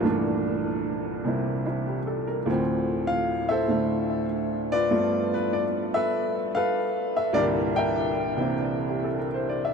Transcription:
0.00 C2 G2 E3 A3
0.05 A#2 D4
1.24 C3 G3 A#3 C4 E4
1.66 E4
1.86 G4
2.07 A4
2.27 A#4
2.46 D2 A2 F3
2.50 C4
3.07 F5
3.49 A4 C5 E5
3.68 A2 D3 A3
4.72 F4 B4 D5
4.91 G2 F3 A3 B3 F4
5.34 B4
5.53 D5
5.94 A4 B4 E5
6.55 A4 B4 F5
7.17 E5
7.33 C2 G2 A#2 D3 G3 G4 A#4 D5
7.38 E4
7.76 A#4 E5 G5
8.37 C3 E3 A#3 C4 E4
8.88 G4
9.04 A4
9.19 A#4
9.34 C5
9.49 D5
9.65 E5

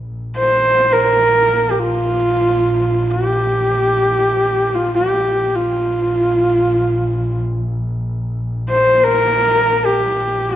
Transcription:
0.07 A#1
0.37 C5
0.93 A#4
1.71 G4
1.79 F4
3.10 G4
4.75 F4
4.95 G4
5.12 A#1
5.55 F4
8.70 C5
9.04 A#4
9.86 G4
10.15 A#1
10.49 F4

